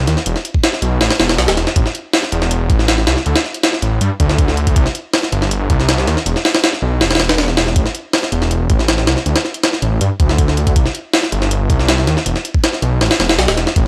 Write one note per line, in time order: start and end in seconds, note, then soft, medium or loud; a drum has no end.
0.07 0.16 D#2 medium
0.07 snare soft
0.07 closed hi-hat medium
0.17 snare soft
0.26 0.35 E1 loud
0.26 closed hi-hat medium
0.36 snare soft
0.45 closed hi-hat medium
0.54 kick medium
0.64 snare loud
0.64 closed hi-hat medium
0.73 snare soft
0.82 0.99 B1 loud
0.82 closed hi-hat medium
1.01 1.10 A1 medium
1.01 snare loud
1.01 open hi-hat medium
1.11 snare loud
1.11 open hi-hat medium
1.20 1.38 E1 loud
1.20 snare loud
1.20 open hi-hat medium
1.29 snare loud
1.29 open hi-hat medium
1.38 1.47 B1 loud
1.38 snare loud
1.38 open hi-hat medium
1.48 1.56 D1 loud
1.48 snare loud
1.48 open hi-hat medium
1.57 1.66 E1 medium
1.57 snare soft
1.57 closed hi-hat medium
1.67 snare medium
1.76 1.85 A1 loud
1.76 kick loud
1.76 closed hi-hat medium
1.86 snare soft
1.95 closed hi-hat medium
2.14 snare loud
2.14 open hi-hat medium
2.23 snare soft
2.32 2.68 E1 loud
2.32 closed hi-hat medium
2.42 snare medium
2.51 closed hi-hat medium
2.70 3.06 A1 loud
2.70 kick loud
2.70 closed hi-hat medium
2.79 snare soft
2.88 snare loud
2.88 closed hi-hat medium
2.98 snare soft
3.07 3.16 C2 loud
3.07 snare loud
3.07 closed hi-hat medium
3.17 snare soft
3.26 3.35 D2 loud
3.26 closed hi-hat medium
3.36 snare loud
3.36 closed hi-hat medium
3.45 snare soft
3.54 closed hi-hat medium
3.63 snare loud
3.63 closed hi-hat medium
3.73 snare soft
3.82 3.99 A1 loud
3.82 closed hi-hat medium
4.01 4.10 G2 medium
4.01 closed hi-hat medium
4.20 4.75 D2 medium
4.20 kick medium
4.20 closed hi-hat medium
4.29 snare medium
4.38 kick loud
4.38 closed hi-hat medium
4.48 snare soft
4.57 closed hi-hat medium
4.67 kick loud
4.67 closed hi-hat medium
4.76 4.85 C2 loud
4.76 kick loud
4.76 closed hi-hat medium
4.86 snare soft
4.95 closed hi-hat medium
5.13 snare loud
5.13 open hi-hat medium
5.23 snare soft
5.32 5.68 G1 loud
5.32 closed hi-hat medium
5.42 snare medium
5.51 closed hi-hat medium
5.70 6.06 C2 loud
5.70 kick loud
5.70 closed hi-hat medium
5.80 snare soft
5.89 snare loud
5.89 closed hi-hat medium
5.98 snare soft
6.07 6.16 D#2 medium
6.07 snare soft
6.07 closed hi-hat medium
6.17 snare soft
6.26 6.35 E1 loud
6.26 closed hi-hat medium
6.36 snare soft
6.45 snare loud
6.45 open hi-hat medium
6.54 snare loud
6.54 open hi-hat medium
6.64 snare loud
6.64 closed hi-hat medium
6.73 snare soft
6.82 7.02 B1 loud
7.01 7.18 E1 medium
7.01 snare loud
7.01 open hi-hat medium
7.11 snare medium
7.11 open hi-hat medium
7.15 snare loud
7.15 open hi-hat medium
7.20 7.75 E1 medium
7.20 snare loud
7.20 open hi-hat medium
7.29 snare loud
7.29 open hi-hat medium
7.38 snare loud
7.38 open hi-hat medium
7.48 snare soft
7.57 snare loud
7.57 open hi-hat medium
7.67 snare soft
7.76 7.85 A1 medium
7.76 kick loud
7.76 closed hi-hat medium
7.86 snare soft
7.95 closed hi-hat medium
8.13 snare loud
8.13 open hi-hat medium
8.23 snare soft
8.32 8.68 E1 loud
8.32 closed hi-hat medium
8.42 snare soft
8.51 closed hi-hat medium
8.70 9.06 A1 loud
8.70 kick loud
8.70 closed hi-hat medium
8.79 snare soft
8.88 snare loud
8.88 closed hi-hat medium
8.98 snare soft
9.07 9.16 C2 medium
9.07 snare loud
9.07 closed hi-hat medium
9.17 snare soft
9.26 9.35 D2 loud
9.26 closed hi-hat medium
9.36 snare loud
9.36 closed hi-hat medium
9.45 snare soft
9.54 closed hi-hat medium
9.63 snare loud
9.63 closed hi-hat medium
9.73 snare soft
9.82 9.99 A1 loud
9.82 closed hi-hat medium
10.01 10.10 G2 medium
10.01 closed hi-hat medium
10.20 10.75 D2 loud
10.20 kick loud
10.20 closed hi-hat medium
10.29 snare medium
10.38 kick loud
10.38 closed hi-hat medium
10.48 snare soft
10.57 closed hi-hat medium
10.67 kick loud
10.67 closed hi-hat medium
10.76 10.85 C2 loud
10.76 kick loud
10.76 closed hi-hat medium
10.86 snare soft
10.95 closed hi-hat medium
11.13 snare loud
11.13 open hi-hat medium
11.23 snare soft
11.32 11.68 G1 loud
11.32 closed hi-hat medium
11.42 snare soft
11.51 closed hi-hat medium
11.70 12.06 C2 loud
11.70 kick loud
11.70 closed hi-hat medium
11.79 snare soft
11.88 snare loud
11.88 closed hi-hat medium
11.98 snare soft
12.07 12.16 D#2 loud
12.07 snare soft
12.07 closed hi-hat medium
12.17 snare soft
12.26 12.35 E1 loud
12.26 closed hi-hat medium
12.36 snare soft
12.45 closed hi-hat medium
12.54 kick medium
12.64 snare loud
12.64 closed hi-hat medium
12.73 snare soft
12.82 12.99 B1 loud
12.82 closed hi-hat medium
13.01 13.10 A1 medium
13.01 snare loud
13.01 open hi-hat medium
13.11 snare loud
13.11 open hi-hat medium
13.20 13.38 E1 loud
13.20 snare loud
13.20 open hi-hat medium
13.29 snare loud
13.29 open hi-hat medium
13.38 13.47 B1 medium
13.38 snare loud
13.38 open hi-hat medium
13.48 13.56 D1 loud
13.48 snare loud
13.48 open hi-hat medium
13.57 13.66 E1 medium
13.57 snare soft
13.57 closed hi-hat medium
13.67 snare medium
13.76 13.85 A1 loud
13.76 kick loud
13.76 closed hi-hat medium